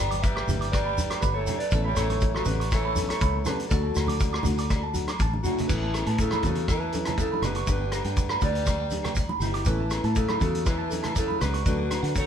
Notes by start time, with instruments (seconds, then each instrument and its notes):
Already playing: fingered electric bass G1, tenor saxophone B3, clean electric guitar D5 G5
0.00 nylon-string guitar D4 G4
0.11 clean electric guitar D6, closed hi-hat, high conga, shekere
0.22 clean electric guitar B4 E5, kick, closed hi-hat, shekere
0.27 tenor saxophone G3
0.36 clean electric guitar D6, cross-stick, low agogo
0.47 fingered electric bass G1, nylon-string guitar G4, closed hi-hat, high conga, low conga, shekere
0.52 nylon-string guitar D4
0.61 clean electric guitar D6, closed hi-hat
0.72 tenor saxophone G3, clean electric guitar B4 D5, kick, cross-stick, closed hi-hat, low agogo, shekere
0.85 clean electric guitar B5
0.98 nylon-string guitar D4 G4, closed hi-hat, high conga, shekere
1.10 clean electric guitar D6, cross-stick, closed hi-hat, low agogo
1.21 fingered electric bass G1, tenor saxophone D3, clean electric guitar G4 B4 B5, kick, closed hi-hat, shekere
1.34 tenor saxophone E3, clean electric guitar A4 C#5
1.47 nylon-string guitar G4, clean electric guitar G5, closed hi-hat, high conga, low conga, low agogo, shekere
1.52 nylon-string guitar D4
1.58 clean electric guitar B4 D5, closed hi-hat
1.63 tenor saxophone A3
1.71 fingered electric bass A1, nylon-string guitar E3 B3 C#4 A4, clean electric guitar C#5, kick, closed hi-hat, shekere
1.84 tenor saxophone G3, clean electric guitar C#5 E5 B5
1.95 fingered electric bass A1, nylon-string guitar C#4 A4, clean electric guitar A4 C#5, cross-stick, closed hi-hat, low agogo, shekere
2.00 tenor saxophone E3, nylon-string guitar B3
2.10 clean electric guitar C#6, closed hi-hat, high conga, shekere
2.21 kick, closed hi-hat, shekere
2.34 tenor saxophone C#3, clean electric guitar F#4 A4 C#6, cross-stick, low agogo
2.45 fingered electric bass A1, nylon-string guitar B3 C#4 A4, clean electric guitar G4 B4, closed hi-hat, high conga, low conga, shekere
2.50 tenor saxophone D3
2.60 clean electric guitar C#6, closed hi-hat
2.71 tenor saxophone E3, clean electric guitar A4 C#5, kick, cross-stick, closed hi-hat, low agogo, shekere
2.85 clean electric guitar B5
2.96 nylon-string guitar A4, closed hi-hat, high conga, shekere
3.00 nylon-string guitar B3 C#4
3.08 tenor saxophone E3, clean electric guitar A4 C#5 C#6, cross-stick, closed hi-hat, low agogo
3.21 fingered electric bass C#2, clean electric guitar B5, kick, closed hi-hat, shekere
3.45 tenor saxophone D3, nylon-string guitar B3 C#4 A4, clean electric guitar G4 B4 A5, cross-stick, closed hi-hat, high conga, low conga, low agogo, shekere
3.60 closed hi-hat
3.69 fingered electric bass D2, tenor saxophone D3, nylon-string guitar A3 D4, clean electric guitar F#4 A4 D5, kick, closed hi-hat, shekere
3.74 nylon-string guitar F#4
3.83 clean electric guitar A5
3.95 fingered electric bass D2, nylon-string guitar D4 F#4, cross-stick, closed hi-hat, low agogo, shekere
4.07 clean electric guitar D6, closed hi-hat, high conga, low conga
4.19 kick, closed hi-hat, shekere
4.33 clean electric guitar D6, cross-stick, low agogo
4.43 fingered electric bass D2, nylon-string guitar F#4, closed hi-hat, high conga, low conga, shekere
4.48 nylon-string guitar D4
4.58 clean electric guitar D6, closed hi-hat, shekere
4.69 clean electric guitar D5, kick, cross-stick, closed hi-hat, low agogo, shekere
4.83 clean electric guitar A5
4.94 nylon-string guitar D4 F#4, closed hi-hat, high conga, shekere
5.08 clean electric guitar D6, cross-stick, closed hi-hat, high conga, low agogo, shekere
5.19 fingered electric bass A1, clean electric guitar A5, kick, closed hi-hat, high conga, shekere
5.33 high conga
5.43 tenor saxophone A2, clean electric guitar D4 F#4 F#5, nylon-string guitar F#4, closed hi-hat, low conga, low agogo, shekere
5.47 nylon-string guitar D4
5.57 closed hi-hat, low conga, shekere
5.68 fingered electric bass A1, nylon-string guitar E3 B3 C#4 A4, tenor saxophone E3, clean electric guitar E4 B4 C#5, kick, crash, shekere
5.83 clean electric guitar A5
5.94 nylon-string guitar C#4 A4, cross-stick, closed hi-hat, low agogo, shekere
5.98 nylon-string guitar B3
6.06 fingered electric bass A2, clean electric guitar A5, closed hi-hat
6.18 tenor saxophone C#3, clean electric guitar E4 A4, kick, closed hi-hat, shekere
6.31 clean electric guitar B5, cross-stick, high conga, low agogo
6.43 fingered electric bass E2, nylon-string guitar C#4 A4, clean electric guitar F#4 A4, kick, closed hi-hat, low conga, shekere
6.47 tenor saxophone C#3, nylon-string guitar B3
6.55 closed hi-hat
6.68 tenor saxophone E3, clean electric guitar E4 B4 C#5, kick, cross-stick, closed hi-hat, low agogo, shekere
6.81 clean electric guitar A5
6.92 nylon-string guitar B3 C#4 A4, closed hi-hat, high conga, shekere
7.05 clean electric guitar A5, cross-stick, closed hi-hat, low conga, low agogo
7.17 tenor saxophone C#3, clean electric guitar E4 A4 C#5, kick, closed hi-hat, shekere
7.32 clean electric guitar B5, high conga
7.42 fingered electric bass F#1, tenor saxophone D3, nylon-string guitar B3 A4, clean electric guitar G4 B4, muted nylon-string guitar stroke, cross-stick, closed hi-hat, low conga, low agogo, shekere
7.55 clean electric guitar C#6, closed hi-hat
7.66 fingered electric bass G1, tenor saxophone D3, nylon-string guitar B3 D4 G4, clean electric guitar D5, kick, closed hi-hat, shekere
7.71 clean electric guitar G4 B4
7.81 clean electric guitar G5
7.92 nylon-string guitar D4 G4, cross-stick, closed hi-hat, low agogo, shekere
8.04 fingered electric bass G2, clean electric guitar G5, closed hi-hat
8.16 kick, closed hi-hat, shekere
8.29 clean electric guitar B5, cross-stick, low agogo
8.40 fingered electric bass D2, tenor saxophone G3, nylon-string guitar D4 G4, clean electric guitar B4 D5, kick, closed hi-hat, low conga, shekere
8.55 closed hi-hat
8.66 clean electric guitar D5, kick, cross-stick, closed hi-hat, low agogo, shekere
8.80 clean electric guitar G5
8.90 nylon-string guitar D4 G4, closed hi-hat, high conga, shekere
9.03 clean electric guitar G5, cross-stick, closed hi-hat, low conga, low agogo
9.15 clean electric guitar D5, kick, closed hi-hat, shekere
9.29 clean electric guitar B5, high conga
9.39 fingered electric bass G1, nylon-string guitar G4, clean electric guitar G4, muted nylon-string guitar stroke, closed hi-hat, low conga, low agogo, shekere
9.44 tenor saxophone B2, clean electric guitar E4
9.54 clean electric guitar D6, closed hi-hat
9.65 fingered electric bass A1, tenor saxophone E3, nylon-string guitar E3 B3 C#4 A4, clean electric guitar E4 B4 C#5, kick, closed hi-hat, shekere
9.80 clean electric guitar A5
9.90 nylon-string guitar B3 C#4 A4, cross-stick, closed hi-hat, low agogo, shekere
10.04 fingered electric bass A2, clean electric guitar A5, closed hi-hat
10.15 tenor saxophone C#3, clean electric guitar E4 A4, kick, closed hi-hat, shekere
10.28 clean electric guitar B5, cross-stick, high conga, low agogo
10.40 fingered electric bass E2, tenor saxophone C#3, nylon-string guitar B3 C#4 A4, clean electric guitar F#4 A4, kick, closed hi-hat, low conga, shekere
10.55 closed hi-hat
10.65 tenor saxophone E3, clean electric guitar E4 B4 C#5, kick, cross-stick, closed hi-hat, low agogo, shekere
10.78 clean electric guitar A5
10.90 nylon-string guitar B3 C#4 A4, closed hi-hat, high conga, shekere
11.03 clean electric guitar A5, cross-stick, closed hi-hat, low conga, low agogo
11.15 tenor saxophone C#3, clean electric guitar E4 A4 C#5, kick, closed hi-hat, shekere
11.28 clean electric guitar B5, high conga
11.41 fingered electric bass C#2, tenor saxophone D3, nylon-string guitar B3 C#4, clean electric guitar G4 B4, cross-stick, closed hi-hat, low conga, low agogo, shekere
11.54 clean electric guitar C#6, closed hi-hat
11.65 fingered electric bass D2, tenor saxophone D3, nylon-string guitar F#3 A3 D4 A4, clean electric guitar F#4 B4 D5, kick, closed hi-hat, shekere
11.78 clean electric guitar F#5
11.90 nylon-string guitar A3 D4, muted nylon-string guitar stroke, cross-stick, closed hi-hat, high conga, low agogo, shekere
12.03 fingered electric bass D3, clean electric guitar F#5, closed hi-hat
12.15 tenor saxophone F#3, clean electric guitar A4 C#5, kick, closed hi-hat, shekere